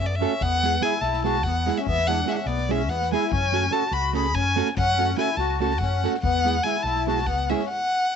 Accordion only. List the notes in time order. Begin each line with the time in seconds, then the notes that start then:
0.00 C#4
0.07 B3
0.18 C#4
0.43 B3
0.83 E4
1.00 E4
1.24 F#4
1.46 B3
1.78 C#4
1.88 B3
2.07 D4
2.28 C#4 D4
2.37 C#4
2.46 B3
2.69 C#4
2.88 B3
3.13 E4
3.31 C#4
3.72 F#4
3.90 F#4
4.14 G#4
4.35 C#4
4.79 C#4
5.18 E4
5.39 F#4
5.61 F#4
5.82 C#4
6.24 B3
6.65 E4
6.85 E4
7.08 F#4
7.27 B3
7.49 C#4